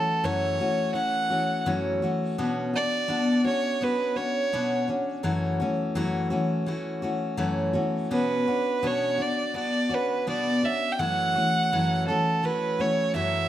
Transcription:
Already playing: E3 A3 C#4 F#4 A4
0.24 F#2 E3 F#3 A3 C#4 F#4 C#5
0.60 E3 A3 C#4 F#4
0.94 E3 A3 C#4 F#4 F#5
1.30 E3 A3 C#4 F#4
1.66 F#2 E3 F#3 A3 C#4 F#4
2.02 E3 A3 C#4 F#4
2.38 B2 B3 C#4 D4 F#4
2.73 D4 F#4 D5
3.08 B2 B3 D4 F#4
3.44 C#4 D4 F#4 C#5
3.81 B3 C#4 D4 F#4 B4
4.16 C#4 D4 F#4 C#5
4.53 B2 B3 C#4 D4 F#4
4.88 C#4 D4 F#4
5.23 F#2 E3 F#3 A3 C#4 F#4
5.60 E3 A3 C#4 F#4
5.95 F#2 E3 F#3 A3 C#4 F#4
6.30 E3 A3 C#4 F#4
6.66 E3 A3 C#4 F#4
7.02 E3 A3 C#4 F#4
7.37 F#2 E3 F#3 A3 C#4 F#4
7.73 E3 A3 C#4 F#4
8.11 B2 B3 C#4 D4 F#4 B4
8.47 C#4 D4 F#4
8.82 B2 B3 C#4 D4 F#4 C#5
9.18 D4 F#4
9.22 D5
9.54 B3 D4 F#4 D5
9.89 C#4 D4 F#4
9.94 B4
10.27 B2 B3 D4 F#4 D5
10.63 C#4 D4 F#4 E5
10.92 G5
10.99 F#2 E3 F#3 A3 C#4 F#4 F#5
11.36 E3 A3 C#4 F#4
11.72 F#2 E3 F#3 A3 C#4 F#4
12.08 E3 A3 C#4 F#4 A4
12.43 E3 A3 C#4 F#4 B4
12.79 E3 A3 C#4 F#4 C#5
13.14 F#2 E3 F#3 A3 C#4 F#4 E5

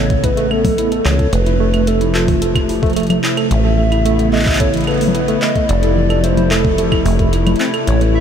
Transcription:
Already playing: A1 C#3 A3 B3 C#5
0.10 A3, kick, closed hi-hat
0.24 E4 B4, kick, closed hi-hat
0.37 A3, closed hi-hat
0.51 A3 A4, claves
0.65 A3, kick, open hi-hat, low conga
0.78 E4, closed hi-hat
0.92 A4, closed hi-hat
1.05 C#2 E3 C#5, clap
1.19 A4, kick, closed hi-hat
1.33 F1 C3 F3 A3 B4, closed hi-hat
1.46 E4, closed hi-hat
1.60 A3
1.74 A3, closed hi-hat, claves
1.87 A3 A4, closed hi-hat
2.01 E4, closed hi-hat
2.15 F4 A4, clap
2.28 E3, kick, open hi-hat
2.42 A4, closed hi-hat
2.55 A3, kick, closed hi-hat, claves
2.69 E4, open hi-hat
2.83 A3, kick, closed hi-hat
2.86 closed hi-hat
2.90 closed hi-hat
2.93 A3, closed hi-hat
2.96 closed hi-hat
3.03 closed hi-hat
3.07 A3, closed hi-hat
3.10 closed hi-hat, low conga, claves
3.24 E4, clap
3.37 A4, closed hi-hat, claves
3.51 A1 C#3 E3 A3 B3 E4 E5, closed hi-hat
3.65 A4
3.78 A3
3.92 E4, closed hi-hat, claves
4.06 A3, closed hi-hat
4.19 A3, closed hi-hat
4.33 A3 D#5, clap
4.36 clap
4.40 clap
4.43 E4, kick, clap
4.46 clap, closed hi-hat
4.50 clap
4.53 clap
4.57 A4 C#5, kick, clap, closed hi-hat
4.74 E3, closed hi-hat
4.77 closed hi-hat
4.81 closed hi-hat
4.84 A4 B4, closed hi-hat
4.87 closed hi-hat, claves
4.91 closed hi-hat
4.94 closed hi-hat
4.98 A3, closed hi-hat, open hi-hat
5.08 low conga
5.15 E4, closed hi-hat
5.28 A3, closed hi-hat
5.42 A3 D#5, clap
5.56 A3, kick, closed hi-hat
5.69 F1 C3 F3 E4 D5, closed hi-hat
5.83 A4, closed hi-hat
5.96 E3
6.10 A4, closed hi-hat, claves
6.24 A3 C5, closed hi-hat
6.37 E4, closed hi-hat, low conga
6.51 A3 A4, clap
6.65 A3, kick
6.78 A3, closed hi-hat
6.92 E4, kick, claves
7.06 F1 A3, open hi-hat
7.19 A3, kick, closed hi-hat
7.33 E4, closed hi-hat
7.46 A3, closed hi-hat, low conga, claves
7.56 closed hi-hat
7.60 C4, clap
7.65 closed hi-hat
7.74 A4, closed hi-hat, claves
7.87 A1 C#3 A3 B3 C#5 A5, closed hi-hat
8.01 A3, closed hi-hat
8.15 E4 E5

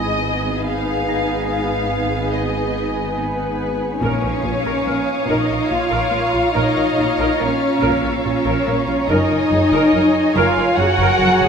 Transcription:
Already playing: G#1 G#2 B3 D#4 G#4 B4 D#5 G#5 B5
0.65 F5
1.08 A#5 A#6
1.49 F5
2.32 D#5
3.18 B3 B4
4.01 A#1 A#2 C#4 F4 A#4 C#5 F5 A#5 C#6 D#6
4.23 A#1 A#4
4.44 A#1 A#2 F4
4.65 A#1 A#4
4.86 A#1 A#3 A#4 F6
5.28 A#1 A#2 D#4 A#4 D#5
5.48 A#1 A#4
5.70 A#1 A#2 F4 F5 F6
5.90 A#1 A#4
6.11 A#1 A#3 A#4
6.33 A#1 F4
6.54 A#1 A#2 D#4 A#4 D#5
6.75 A#1 A#4
6.97 A#1 A#2 F4
7.18 A#1 A#4
7.38 A#1 A#3 C#4 A#4 C#5
7.81 A#1 A#2 A#4
7.91 E6
8.02 A#1 A#4
8.24 A#1 A#2 C#4 F4 C#5
8.44 A#1 A#4
8.66 A#1 A#3 A#4
8.87 A#1 F4
9.08 F#1 F#2 D#4 G#4 A#4 C#5 D#5 G#5 A#5
9.30 F#1 A#4
9.51 F#1 F#2 G#4
9.72 F#1 A#4
9.93 F#1 F#3 A#4
10.36 F#1 F#2 F4 A#4 F5 G#5 F6
10.57 F#1 A#4
10.77 F#1 F#2 F#4 G#4 F#5
10.99 F#1 A#4
11.20 F#1 F#3 A#4
11.41 F#1 G#4

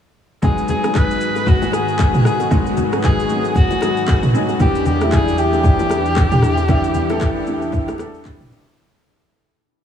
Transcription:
0.42 G#2 D#3 F#3 G#3 B3 D#4 F#4 G#4, kick, low conga, shaker
0.58 shaker
0.68 G#4, low conga, shaker
0.83 F#3 G#3 B3 D#4 G#4, cross-stick, shaker
0.95 B4, kick, clap, high bongo, shaker
1.11 shaker
1.21 shaker
1.36 high bongo, shaker
1.46 F#4, kick, low conga, shaker
1.62 low bongo, shaker
1.72 G#4, cross-stick, low bongo, shaker
1.88 shaker
1.99 kick, clap, high bongo, shaker
2.14 mid tom, shaker
2.25 G#4, cross-stick, shaker
2.40 high bongo, shaker
2.50 F#3 G#3 B3 D#4 F#4, kick, low conga, shaker
2.67 shaker
2.77 low conga, shaker
2.92 F#3 G#3 B3 D#4 G#4, cross-stick, shaker
3.04 G#4, kick, clap, high bongo, shaker
3.19 shaker
3.29 F#3 G#3 A#3 D#4 G#4, shaker
3.36 B3
3.44 high bongo, shaker
3.55 F#4, kick, low conga, shaker
3.71 low bongo, shaker
3.81 F#3 G#3 B3 D#4 G#4, cross-stick, low bongo, shaker
3.97 shaker
4.08 kick, clap, high bongo, shaker
4.23 mid tom, shaker
4.33 F#3 G#3 B3 D#4 G#4, shaker
4.49 high bongo, shaker
4.59 E2 E3 G3 B3 D4 G4, kick, low conga, shaker
4.75 shaker
4.86 G4, low conga, shaker
5.00 E3 F#3 B3 D4 E4, cross-stick, shaker
5.07 G3
5.12 G#4, kick, clap, high bongo, shaker
5.28 shaker
5.38 G4, shaker
5.53 high bongo, shaker
5.64 kick, low conga, shaker
5.79 low bongo, shaker
5.89 cross-stick, low bongo, shaker
6.06 shaker
6.16 kick, clap, high bongo, shaker
6.32 mid tom, shaker
6.42 cross-stick, shaker
6.57 high bongo, shaker
6.68 E3 G3 B3 D4 E4, kick, low conga, shaker
6.84 shaker
6.94 low conga, shaker
7.09 E3 G3 B3 D4 A4, cross-stick, low bongo, shaker
7.21 kick, clap, high bongo, shaker
7.46 E3 G3 B3 D4 G4, shaker
7.62 high bongo, shaker
7.72 kick, low conga, shaker
7.88 cross-stick, low bongo, shaker
7.98 E3 G3 B3 D4 A4, cross-stick, low bongo, shaker
8.14 shaker
8.25 kick, clap, high bongo, shaker
8.40 mid tom, shaker
8.51 E3 G3 B3 D4 G4, shaker
8.66 high bongo, shaker

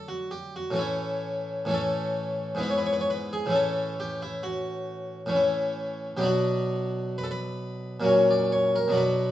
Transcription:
Already playing: D3 F#3 A3 D4
0.08 F#4
0.31 G4
0.56 F#4
0.70 A2 E3 A3
0.76 C#4 E4
1.65 A2 E3 A3
1.71 C#4 A4
2.55 G#2 E3 B3
2.61 E4 B4
2.70 C#5
2.78 B4
2.86 C#5
2.93 B4
3.01 C#5
3.10 B4
3.33 G#4
3.46 A2 E3
3.50 C#4 E4
3.55 A4
4.00 G4
4.22 E4
4.43 F#4
5.26 A2 E3 C#4
5.36 E4
6.17 B2 F#3 B3 G4
6.23 D4 F#4
7.18 B4
7.24 A4
7.31 B4
8.00 A#2 F#3 C#4
8.05 F#4 C#5
8.30 D5
8.52 C#5
8.76 A#4
8.88 B2 F#3
8.92 D4 F#4
8.97 B4

